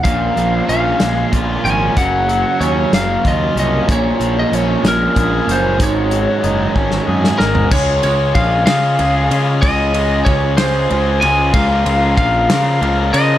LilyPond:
<<
  \new Staff \with { instrumentName = "Lead electric guitar" } { \time 6/8 \key des \major \tempo 4. = 63 f''4 f''4 r8 aes''8 | ges''4 des''8 f''8 ees''8 ees''8 | des''8. ees''16 des''8 bes'4 c''8 | des''2 r8 bes'8 |
des''8 des''8 f''8 f''4. | ees''4 des''8 c''4 aes''8 | f''4 f''4. ees''8 | }
  \new Staff \with { instrumentName = "Overdriven electric guitar" } { \time 6/8 \key des \major bes,8 f8 des'8 aes8 f'8 des'8 | ges8 ges8 des'8 bes8 f'8 des'8 | bes,8 f8 des'8 aes8 aes'8 des'8 | aes,8 ges8 ees'8 des'8 aes'8 ees'8 |
<des aes des' f' aes'>8 <des aes des' f' aes'>4 <des aes des' f' aes'>8 <des aes des' f' aes'>8 <des aes des' f' aes'>8 | <des aes des' f' aes'>8 <des aes des' f' aes'>4 <des aes des' f' aes'>8 <des aes des' f' aes'>8 <des aes des' f' aes'>8 | <des f bes f' bes'>8 <des f bes f' bes'>4 <des f bes f' bes'>8 <des f bes f' bes'>8 <des f bes f' bes'>8 | }
  \new Staff \with { instrumentName = "Distorted electric guitar" } { \clef bass \time 6/8 \key des \major <bes, f bes des'>2. | <ges, des ges bes des'>2. | <bes, f bes des'>2. | <aes, ees aes ees'>2. |
r2. | r2. | r2. | }
  \new Staff \with { instrumentName = "Picked electric bass" } { \clef bass \time 6/8 \key des \major bes,,8 bes,,8 bes,,8 bes,,8 bes,,8 aes,,8 | ges,,4 ees,8 ges,,8 ees,8 c,8 | bes,,8 bes,,8 bes,,8 bes,,8 bes,,8 ges,,8 | aes,,4 ges,,8 aes,,8 ges,8 aes,,8 |
des,8 des,8 bes,,8 des8 des,8 des8 | des,4 des,4 des,8 des,8 | des,8 des,8 bes,,8 des8 des,8 des8 | }
  \new DrumStaff \with { instrumentName = "Drums" } \drummode { \time 6/8 <hh bd>8 hh8 hh8 <hh sn>8 <hh bd>8 hh8 | <hh bd>8 hh8 hh8 <hh sn>8 <hh bd>8 hh8 | <hh bd>8 hh8 hh8 <hh sn>8 <hh bd>8 hh8 | <hh bd>8 hh8 hh8 bd16 sn8 sn16 sn16 tomfh16 |
<cymc bd>8 cymr8 <bd cymr>8 <cymr sn>8 cymr8 cymr8 | <bd cymr>8 cymr8 <bd cymr>8 <cymr sn>8 cymr8 cymr8 | <bd cymr>8 cymr8 <bd cymr>8 <cymr sn>8 cymr8 cymr8 | }
>>